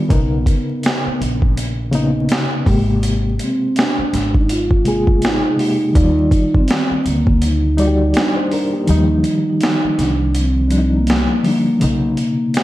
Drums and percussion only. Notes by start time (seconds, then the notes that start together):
0.10 kick, closed hi-hat
0.46 kick, closed hi-hat
0.83 snare, closed hi-hat
1.22 closed hi-hat
1.42 kick
1.57 closed hi-hat
1.93 closed hi-hat
2.29 snare, closed hi-hat
2.66 kick, open hi-hat
3.03 closed hi-hat
3.39 closed hi-hat
3.76 snare, closed hi-hat
4.14 snare, closed hi-hat
4.34 kick
4.49 closed hi-hat
4.71 kick
4.85 closed hi-hat
5.07 kick
5.22 snare, closed hi-hat
5.59 open hi-hat
5.95 kick, closed hi-hat
6.31 kick, closed hi-hat
6.54 kick
6.68 snare, closed hi-hat
7.06 closed hi-hat
7.27 kick
7.42 closed hi-hat
7.78 closed hi-hat
8.14 snare, closed hi-hat
8.51 open hi-hat
8.87 closed hi-hat
9.24 closed hi-hat
9.61 snare, closed hi-hat
9.99 snare, closed hi-hat
10.35 closed hi-hat
10.71 closed hi-hat
11.07 snare, closed hi-hat
11.44 open hi-hat
11.81 closed hi-hat
12.17 closed hi-hat
12.54 snare, closed hi-hat